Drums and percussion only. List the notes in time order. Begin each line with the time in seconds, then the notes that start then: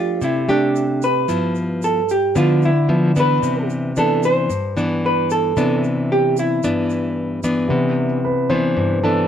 0.21 shaker
0.49 shaker
0.76 shaker
1.02 shaker
1.29 shaker
1.55 shaker
1.82 shaker
2.09 shaker
2.36 shaker
2.62 shaker
3.16 shaker
3.43 shaker
3.70 shaker
3.96 shaker
4.23 shaker
4.50 shaker
4.77 shaker
5.30 shaker
5.57 shaker
5.84 shaker
6.37 shaker
6.63 shaker
6.90 shaker
7.43 shaker